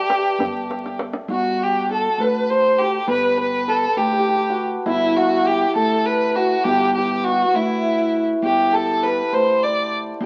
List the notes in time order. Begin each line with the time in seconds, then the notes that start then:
Already playing: G4 A4 B4 D5 E5
0.10 tombak tek
0.39 G1, tombak dum
0.71 tombak tek
0.86 tombak ka
0.99 tombak tek
1.13 tombak ka
1.28 G1 F#4
1.63 G4
1.90 A4
2.18 D2 B4
2.50 C5
2.79 G4
3.07 G1 B4
3.38 B4
3.68 A4
3.97 D2 G4
4.07 G4
4.12 G4
4.19 G4
4.28 G4
4.35 G4
4.50 F#4
4.86 G1 E4
5.16 F#4
5.44 G4
5.75 D2 A4
6.05 B4
6.36 F#4
6.64 G1 G4
6.94 G4
7.24 F#4
7.54 D2 E4
8.42 G1 G4
8.73 A4
9.03 B4
9.32 D2 C5
9.63 D5
10.20 G1 G4